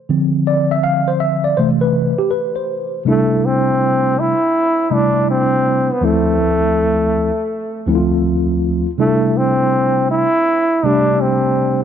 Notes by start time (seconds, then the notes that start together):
0.09 D3 F3 C4
0.47 D5
0.71 E5
0.84 F5
1.08 C5
1.20 E5
1.44 D5
1.57 C3 E3 A3 C5
1.81 B4
2.19 G4
2.31 B4
2.56 C5
3.05 C3 G3 A3 D4 E4
3.45 C4
4.20 E4
4.90 C3 G3 A3 D4 E4
5.31 C4
5.92 B3
6.01 D2 F3 A3 C4 E4
7.86 D2 F3 A3 C4 E4
7.95 F4
8.98 C3 G3 A3 D4 E4
9.38 C4
10.11 E4
10.83 C3 G3 A3 D4 G4
11.21 C4